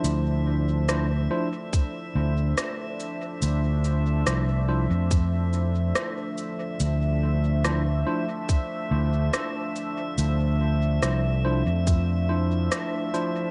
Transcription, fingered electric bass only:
X:1
M:4/4
L:1/16
Q:1/4=71
K:Dm
V:1 name="Fingered electric bass" clef=bass
D,,6 z4 D,,2 z4 | D,,4 C,,3 F,,4- F,, z4 | D,,6 z4 D,,2 z4 | D,,4 C,,3 F,,4- F,, z4 |]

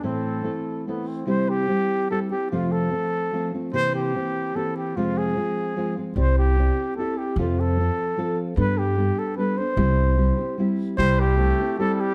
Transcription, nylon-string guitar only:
X:1
M:3/4
L:1/8
Q:1/4=148
K:Am
V:1 name="Nylon-string guitar"
[A,,E,A,CEA]2 [A,CEA]2 [A,CEA]2 | [K:C] [C,G,CEG]2 [G,CEG]2 [G,CEG] [CEG] | [F,,C,F,A,CF]2 [A,CF]2 [F,A,CF] [F,A,CF] | [C,E,_B,CG]2 [E,B,CG]2 [E,B,CG]2 |
[F,,C,F,_A,CF]2 [F,A,CF]2 [F,A,CF] [F,A,CF] | [CEGd]2 [CEGd]2 [CEGd]2 | [F,,C,F,CFA]2 [F,FA]2 [F,CFA]2 | [G,B,DA]2 [G,B,DA]2 [G,B,DA] [B,DA] |
[C,G,CEG]2 [G,CEG] [CEG] [G,CEG]2 | [C,G,CEG]2 [G,CEG] [CEG] [G,CEG]2 |]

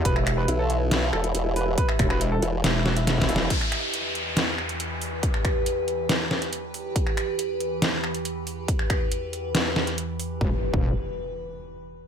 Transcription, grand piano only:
X:1
M:4/4
L:1/16
Q:1/4=139
K:Em
V:1 name="Grand piano"
B E E B E A E z E E A E E E B E | B E E B E A E z E E F E E E E E | z16 | z16 |
z16 | z16 | z16 |]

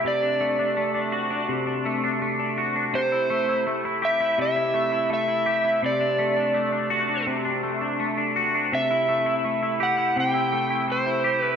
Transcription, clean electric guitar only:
X:1
M:4/4
L:1/16
Q:1/4=83
K:Clyd
V:1 name="Clean electric guitar"
C, D A, D A, D F D C, D A, D A, D F D | C, E A, E A, E G E C, E A, E A, E G E | C, D A, D A, D F D C, D A, D A, D F D | C, E A, E A, E G E C, E A, E A, E G E |]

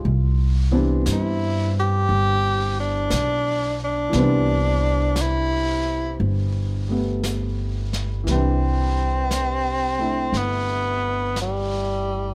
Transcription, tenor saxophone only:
X:1
M:4/4
L:1/8
Q:"Swing" 1/4=58
K:C
V:1 name="Tenor saxophone"
z2 E G2 D2 D- | D2 E2 z4 | C4 B,2 G,2 |]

